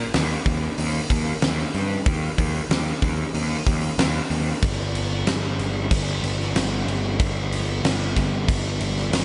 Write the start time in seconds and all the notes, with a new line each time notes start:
0.14 D#2, snare, open hi-hat
0.46 D#2, kick, open hi-hat
0.78 D#2, open hi-hat
1.10 D#2, kick, open hi-hat
1.42 D#2, snare, open hi-hat
1.74 G2, open hi-hat
2.06 D#2, kick, open hi-hat
2.38 D#2, kick, open hi-hat
2.70 D#2, snare, open hi-hat
3.02 D#2, kick, open hi-hat
3.34 D#2, open hi-hat
3.67 D#2, kick, open hi-hat
3.98 D#2, snare, open hi-hat
4.30 D#2, open hi-hat
4.63 G1, kick, crash
4.95 crash
5.27 G1, snare, crash
5.58 G1, crash
5.91 G1, kick, crash
6.23 G1, crash
6.40 snare
6.55 G1, snare, crash
6.87 G1, crash
7.20 G1, kick, crash
7.52 crash
7.84 G1, snare, crash
8.16 G1, kick, crash
8.48 G1, kick, crash
8.80 G1, crash
8.98 snare
9.12 G1, snare, crash